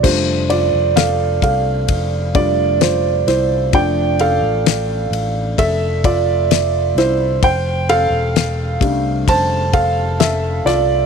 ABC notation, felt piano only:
X:1
M:4/4
L:1/8
Q:1/4=65
K:F
V:1 name="Felt piano"
[Fc] [Fd] [Af] [Af]2 [Fd] [Fc] [Ec] | [dg] [Af]3 [Ae] [Fd]2 [Ec] | [cg] [Af]3 [ca] [Af] [Ae] [Fd] |]
V:2 name="Felt piano"
[G,A,D]4- [G,A,D] [G,A,D] z2 | [F,A,D]8 | z3 [G,A,D] z4 |]